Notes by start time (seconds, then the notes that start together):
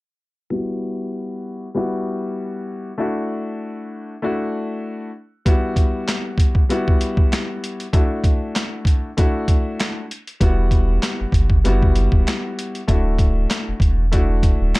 0.50 G3 B3 E4 F#4
1.75 G3 B3 E4 F#4
2.98 A3 D4 E4 F#4
4.22 A3 D4 E4 F#4
5.45 G3 B3 E4 F#4, kick, closed hi-hat
5.76 kick, closed hi-hat
6.08 snare, clap, closed hi-hat
6.38 kick, closed hi-hat
6.55 kick
6.69 G3 B3 E4 F#4, closed hi-hat
6.88 kick
7.01 closed hi-hat
7.17 kick
7.33 snare, clap, closed hi-hat
7.64 closed hi-hat
7.80 closed hi-hat
7.93 A3 D4 E4 F#4, kick, closed hi-hat
8.24 kick, closed hi-hat
8.56 snare, clap, closed hi-hat
8.85 kick, closed hi-hat
9.17 A3 D4 E4 F#4, kick, closed hi-hat
9.48 kick, closed hi-hat
9.80 snare, clap, closed hi-hat
10.11 closed hi-hat
10.27 closed hi-hat
10.40 E1 G3 B3 E4 F#4, kick, closed hi-hat
10.71 kick, closed hi-hat
11.03 snare, clap, closed hi-hat
11.20 F#1
11.32 F#1, kick, closed hi-hat
11.50 kick
11.64 G3 B3 E4 F#4, closed hi-hat
11.83 kick
11.96 closed hi-hat
12.12 E1, kick
12.28 snare, clap, closed hi-hat
12.59 closed hi-hat
12.75 closed hi-hat
12.87 D1 A3 D4 E4 F#4, kick, closed hi-hat
13.19 kick, closed hi-hat
13.50 snare, clap, closed hi-hat
13.68 E1
13.80 E1, kick, closed hi-hat
14.12 A3 D4 E4 F#4, kick, closed hi-hat
14.43 kick, closed hi-hat
14.61 D1
14.75 snare, clap, closed hi-hat